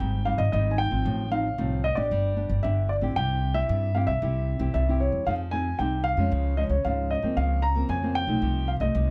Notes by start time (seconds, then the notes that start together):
Already playing: G3 C4 D#4 G5
0.00 G#1 G#2
0.25 G3 C4 D#4 F5
0.38 G#1 D#5
0.52 G#1 D#3 G3 C4 D#4 D#5
0.71 G#5
0.78 G5
0.91 G#1 F3 C4 D#4
1.05 A1 A2
1.30 F3 C4 D#4 F5
1.58 C2 A2 F3 C4 D#4
1.84 D#5
1.95 A1 B3 D4 G4 D5
2.11 G1 G3
2.36 B3 D4 G4
2.50 G1
2.63 G1 D3 B3 D4 G4 E5
2.89 D5
3.01 A1 C4 E4 G4
3.16 C2 C3 G5
3.54 C4 E4 G4 E5
3.69 G2
3.95 C4 E4 G4 F5
4.07 C2 E5
4.22 C2 C3 C4 E4 G4
4.59 C2 C4 E4 G4
4.74 C2 G2 E5
4.89 C4 E4 G4
5.00 C#5
5.12 E2
5.27 F2 F3 C4 D#4 G#4 F5
5.51 C4 D#4 G#4 G#5
5.79 C2 C3 C4 D#4 G#4 G5
6.04 F5
6.17 F2 F3 G#3 C#4
6.32 C#2 C#3
6.57 F3 G#3 C#4 D#5
6.69 C#2 C#5
6.85 C#2 G#2 F3 G#3 C#4 F5
7.11 D#5
7.22 C#2 F3 A#3 C4
7.37 C#2 C#3 F5
7.62 A#5
7.75 F3 A#3 C4
7.89 F2 C#3 G#5
8.02 F3 A#3 C4
8.15 G5
8.27 B1 F3 A3 D#4
8.42 C2 C3
8.68 F5
8.80 C2 F3 A3 D#4 D#5
8.95 C2 C3